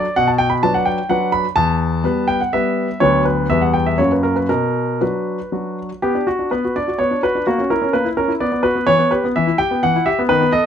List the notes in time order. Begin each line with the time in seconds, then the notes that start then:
Already playing: D5
0.16 B2 F#5
0.28 A5
0.38 G5
0.50 B5
0.63 F#3 D4 B4 A5
0.74 F#5
0.85 G5
1.09 F#3 D4 B4 F#5
1.32 B5
1.56 E2 A5
2.04 G3 B3 B4
2.28 G5
2.41 F#5
2.53 G3 B3 B4 E5
3.00 D2 F#3 B3 B4 C#5
3.25 B4
3.50 E2 G3 B3 B4 E5
3.62 F#5
3.74 G5
3.86 E5
3.98 F#2 F#3 A#3 F#4 C#5
4.12 B4
4.23 A#4
4.36 B4
4.49 B2 A#4
5.01 F#3 D4 F#4 B4
5.52 F#3 D4 F#4
6.02 B3 G4
6.15 D4
6.27 F#4
6.39 D4
6.51 B3 B4
6.65 F#4
6.76 D4 D5
6.88 F#4
6.99 B3 C#5
7.11 D4
7.23 F#4 B4
7.35 D4
7.47 A#3 F#4
7.58 C#4
7.70 E4 A#4
7.82 C#4
7.93 A#3 B4
8.05 E4
8.17 C#4 A#4
8.28 E4
8.40 B3 D5
8.52 B3
8.63 F#4 B4
8.75 B3
8.87 E3 C#5
8.99 B3
9.11 G4 B4
9.24 B3
9.36 E3 E5
9.47 E4
9.58 G4 G5
9.71 B3
9.83 E3 F#5
9.96 E4
10.06 G4 E5
10.19 B3
10.29 D#3 B4
10.41 B3
10.52 A4 D#5